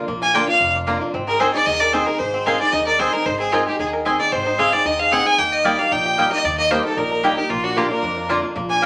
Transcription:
Already playing: F4 A#4
0.08 A#1 A#2 A#3
0.22 F4 G#5
0.34 D3 A#3 D4 F4 A#4 D5 G5 A#5
0.47 D4 F4 F5
0.60 F1 F2 F4
0.75 A#3
0.87 D3 A#3 D4 F4 D5 A#5
1.01 A#3 D4 F4
1.14 G#1 G#2 C4
1.27 G#4 A#4
1.40 G#3 C4 D#4 G#4 A#4 C5 D#5 G#5
1.53 D#4 G#4 D5
1.65 D#2 D#3 G#4 D#5
1.80 A#4 D5
1.93 G#3 C4 D#4 G#4 C5 D#5 G#5
2.06 D#4 G#4 A#4
2.19 G#1 G#2 D#4 C5
2.34 C4
2.46 G#3 C4 D#4 G#4 A#4 D#5 F5 G#5
2.59 D#4 G#4 D5
2.72 D#2 D#3 D#4 D#5
2.87 A#4 D5
2.99 G#3 C4 D#4 G#4 C5 D#5 G#5
3.13 D#4 G#4 A#4
3.26 G#1 G#2 D#4 C5
3.40 C4 G#4
3.52 G#3 C4 D#4 F4 G#4 A#4 D#5 G#5
3.67 D#4 G4 G#4
3.79 D#2 D#3 D#4 G#4
3.93 A#4
4.05 G#3 C4 D#4 G#4 D#5 G#5
4.20 D#4 G#4 D5
4.32 G#1 G#2 C4 C5
4.46 D#4
4.58 G#3 C4 D#4 G#4 D#5 F5 G#5
4.73 C4 D#4 G#4 D5
4.85 D#2 D#3 D#4 D#5
4.99 G#4 F5
5.11 G#3 C4 D#4 G#4 D#5 F#5 G#5
5.25 C4 D#4 G#4 G#5
5.38 D#2 D#3 A#3 G5
5.52 D#5
5.64 G3 A#3 D#4 G4 D5 D#5 G5
5.79 A#3 D#4 G4 F5
5.91 A#1 A#2 D#4 G5
6.05 G4
6.17 G3 A#3 D#4 G4 D#5 G5
6.31 A#3 D#4 G4 D#5
6.44 D#2 D#3 D#4 D5
6.58 A#3 D#5
6.71 G3 A#3 D#4 G4 A#4 C5 D#5 G5
6.84 D#4 G4 A4
6.97 A#1 A#2 D#4 A#4
7.11 A#4
7.23 G3 A#3 D#4 G4 D#5 G5
7.37 D#4 G4
7.50 A#1 A#2 A#3 F4
7.64 D4 F#4
7.76 D3 A#3 D4 F4 G4 D5 A#5
7.90 A#3 D4 F4 A#4
8.03 F2 D4
8.17 F4
8.29 D3 A#3 D4 F4 D5 A#5
8.43 A#3 D4 F4
8.56 A#1 A#2 A#3
8.70 D4 G#5
8.82 D3 A#3 F4 G5

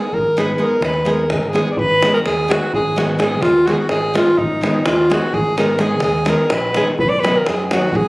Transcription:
Already playing: G#4
0.12 G#1 A#4, davul low
0.37 G#3 B3 D#4 G#4 B4, davul high
0.58 G#3 B3 D#4 G#4
0.62 A#4
0.81 D#2 B4, davul high
0.94 davul high
1.05 G#3 B3 D#4 G#4, davul high
1.11 A#4
1.30 G#1 G#4, davul high, davul low
1.38 A#4
1.43 davul high
1.48 G#4
1.53 G#3 B3 D#4 G#4, davul high
1.71 D5
1.77 G#1 B4, davul low
2.02 D#3 G#3 B3 D#4 G#4, davul high
2.14 A#4
2.26 D#2 G#4, davul high
2.48 D#3 G#3 B3 D#4 F#4 G#4, davul high
2.73 G#1 G#4, davul low
2.96 D#3 G#3 B3 D#4 F#4 G#4, davul high
3.18 D#3 G#3 B3 D#4 G#4, davul high
3.42 D#2 F4, davul high
3.66 D#3 G#3 B3 D#4 F#4 G#4, davul high
3.73 G#4
3.79 F#4
3.89 G#1 G#4, davul high
4.14 D#3 G#3 B3 D#4 F4 G#4, davul high
4.27 davul high
4.38 G#1 D#4, davul low
4.61 D#3 G#3 B3 D#4 G#4, davul high
4.86 D#2 F4, davul high
5.10 D#3 G#3 B3 D#4 F#4 G#4, davul high
5.34 G#1 G#4, davul low
5.57 D#3 G#3 B3 D#4 G#4 A#4, davul high
5.78 D#3 G#3 B3 D#4 G#4, davul high
6.00 D#2 G#4, davul high
6.25 D#3 G#3 B3 D#4 G#4, davul high
6.29 A#4
6.50 A#1 B4, davul high
6.74 D#3 G#3 B3 D#4 G#4, davul high
6.87 davul high
6.99 B1 B4, davul low
7.09 D5
7.20 D#3 B4
7.24 F#3 B3 D#4 F#4, davul high
7.37 A#4
7.46 F#2 G#4, davul high
7.66 G#4
7.71 D#3 F#3 B3 D#4 F#4, davul high
7.92 B1 G#4, davul low

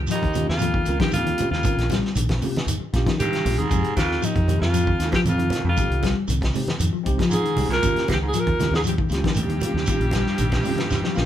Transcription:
0.07 D#2 F3, closed hi-hat, high conga, shekere
0.11 D#4
0.22 D#2, kick, closed hi-hat, high conga
0.34 D#3 A#3 C#4 F4 G4, closed hi-hat, low conga, shekere
0.49 D#2 F2 F4, snare
0.59 F3, closed hi-hat, high conga, low conga, shekere
0.74 D#3, kick
0.85 C#2 A#3 C#4 F4 A#4, closed hi-hat, shekere
0.99 G2 D#3 F3 G4, kick, snare, closed hi-hat
1.11 D#2 F2 F4, closed hi-hat, high conga, shekere
1.25 D#3, closed hi-hat, high conga
1.38 A#3 C#4 F4 G4, closed hi-hat, high conga, low conga, shekere
1.51 D#2 F2 C#3 F4, snare
1.63 D#3 A#3 C#4 F4 A#4, kick, closed hi-hat, shekere
1.77 A#1, snare, closed hi-hat
1.90 G3, kick, snare, closed hi-hat, high conga, shekere
2.03 muted fingered electric bass stroke, snare
2.15 A#1 D#3, closed hi-hat, high conga, shekere
2.29 kick, snare, closed hi-hat, high conga
2.42 C3 A#3 C#4 F4 G4, open hi-hat, low conga, shekere
2.56 snare, closed hi-hat, high conga
2.67 D#2 D#3, closed hi-hat, high conga, shekere
2.80 muted clean electric guitar stroke, muted fingered electric bass stroke
2.93 A#1 A#3 C#4 F4 G4, kick, snare, closed hi-hat, shekere
3.06 D#3 F3, kick, snare, closed hi-hat
3.19 G2 G4, closed hi-hat, high conga, low conga, shekere
3.31 D#3, snare, closed hi-hat
3.45 A#1 A#3 C#4 F4 G4, open hi-hat, high conga, low conga, shekere
3.58 D#2 G#2 C3 G#4, closed hi-hat
3.70 F2 C3 G#3 C4 D#4 G4, kick, closed hi-hat, shekere
3.84 closed hi-hat
3.96 D#2 F2 D#3 F4, kick, snare, closed hi-hat, high conga, shekere
4.11 snare
4.22 D#2 F3 D#4, closed hi-hat, high conga, shekere
4.35 F2, kick, closed hi-hat, high conga
4.47 D#3 G#3 C4 D#4 G4, closed hi-hat, low conga, shekere
4.57 F2 F4
4.61 F2, snare
4.73 F3, closed hi-hat, shekere
4.86 D#3, kick
4.99 D#2 G#3 C4 D#4 F4, snare, closed hi-hat, shekere
5.12 G2 F3 G4, kick, snare, closed hi-hat
5.24 F2, closed hi-hat, high conga, low conga, shekere
5.29 F4
5.38 D#3, closed hi-hat, high conga
5.50 G#3 C4 D#4 A#4, snare, closed hi-hat, high conga, low conga, shekere
5.63 F2 C3
5.69 F4
5.76 D#3 G#3 C4 D#4 G4, kick, closed hi-hat, shekere
5.90 C2, closed hi-hat
6.02 G3, kick, snare, closed hi-hat, high conga, shekere
6.28 C2 D#3, closed hi-hat, high conga, shekere
6.41 kick, snare, closed hi-hat, high conga
6.54 C3 G#3 C4 D#4 G4, open hi-hat, low conga, shekere
6.67 snare, closed hi-hat, high conga
6.79 F2 D#3, closed hi-hat, high conga, shekere
6.93 F3, muted fingered electric bass stroke
7.04 C2 G#3 C4 D#4 G4, kick, closed hi-hat, shekere
7.18 F3, kick, snare, closed hi-hat
7.29 G#2, closed hi-hat, high conga, shekere
7.33 G#4
7.44 D#3, closed hi-hat
7.56 C2 G#3 C4 D#4 G4, open hi-hat, high conga, low conga, shekere
7.69 C2 A#2 C3 A#4, snare, closed hi-hat
7.83 D#2 C#3 A#3 C#4 F4 G4, kick, closed hi-hat, shekere
7.96 snare, closed hi-hat
8.08 C#2 G2 D#3, kick, snare, closed hi-hat, high conga, shekere
8.13 G4
8.21 G#2
8.28 G#4
8.33 A#2 F3, closed hi-hat, high conga, shekere
8.40 A#4
8.47 D#2, kick, closed hi-hat, high conga
8.59 D#3 A#3 C#4 F4 G4, snare, closed hi-hat, low conga, shekere
8.71 D#2, snare, high conga
8.75 G#2 G#4
8.84 F3, closed hi-hat, high conga, shekere
8.88 G2 G4
8.98 D#3, kick
9.09 C#2 A#3 C#4 F4 G4, snare, closed hi-hat, shekere
9.23 D#3 F3, kick, snare, closed hi-hat
9.35 D#2, closed hi-hat, high conga, low conga, shekere
9.49 D#3, closed hi-hat, high conga
9.60 A#3 C#4 F4 G4, closed hi-hat, high conga, low conga, shekere
9.74 D#2 C#3, snare
9.85 A#3 F4, kick, closed hi-hat, high conga, shekere
9.89 D#3 C#4 G4
10.00 A#1, closed hi-hat
10.11 G3, kick, snare, closed hi-hat, high conga, shekere
10.26 muted fingered electric bass stroke, snare
10.38 A#1 D#3, closed hi-hat, high conga, shekere
10.50 kick, snare, closed hi-hat, high conga
10.63 A#3 C#4 F4, open hi-hat, low conga, shekere
10.67 C3 G4
10.75 snare, closed hi-hat, high conga
10.90 D#2 D#3, snare, high conga, shekere
11.04 F3, muted fingered electric bass stroke, snare
11.15 A#1 A#3 C#4 F4 A#4, snare, shekere

